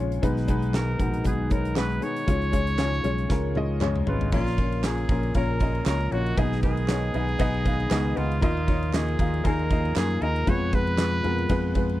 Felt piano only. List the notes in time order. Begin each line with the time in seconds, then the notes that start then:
Already playing: G#3 C#4 F4 G#4
0.00 C#5
0.22 B2 G#3 B3 D#4 B4
0.48 G#3 B3 D#4 B4
0.73 G#3 B3 D#4 B4
0.99 G#3 B3 D#4 F#4
1.24 G#3 B3 D#4 B4
1.50 G#3 B3 D#4 C#5
1.75 G#3 B3 D#4 B4
2.01 G#3 B3 D#4 B4
2.27 G#2 G#3 C#4 F4 C#5
2.52 G#3 C#4 F4 C#5
2.78 G#3 C#4 F4 C#5
3.04 G#3 C#4 F4 C#5
3.29 G#3 C#4 F4 A#4
3.56 G#3 C#4 F4 D#5
3.81 G#3 C#4 F4 C#5
4.06 G#3 C#4 F4 B4
4.32 A#2 F3 A#3 C#4 F4 C#5
4.58 A#3 C#4 F4 C#5
4.84 A#3 C#4 F4 G#4
5.10 A#3 C#4 F4 A#4
5.35 A#3 C#4 F4 C#5
5.60 A#3 C#4 F4 D#5
5.86 A#3 C#4 F4 C#5
6.12 A#3 C#4 F4 C#5
6.37 B2 B3 D#4 G#4 D#5
6.63 B3 D#4 G#4 A#4
6.88 B3 D#4 G#4 C#5
7.14 B3 D#4 G#4 D#5
7.39 B3 D#4 G#4 D#5
7.65 B3 D#4 G#4 F5
7.90 B3 D#4 G#4 D#5
8.16 B3 D#4 G#4 F#5
8.41 A#2 A#3 D#4 F4 D#5
8.67 A#3 D#4 F4 C#5
8.93 A#3 D#4 F4 D#5
9.18 A#3 D#4 F4 F5
9.44 A#3 D#4 F4 G#4
9.70 A#3 D#4 F4 D#5
9.95 A#3 D#4 F4 A#4
10.21 A#3 D#4 F4 D#5
10.47 F3 G#3 B3 F4 B4
10.73 G#3 B3 F4 B4
10.98 G#3 B3 F4 B4
11.24 G#3 B3 F4 A#4
11.49 G#3 B3 F4 B4
11.75 G#3 B3 F4 B4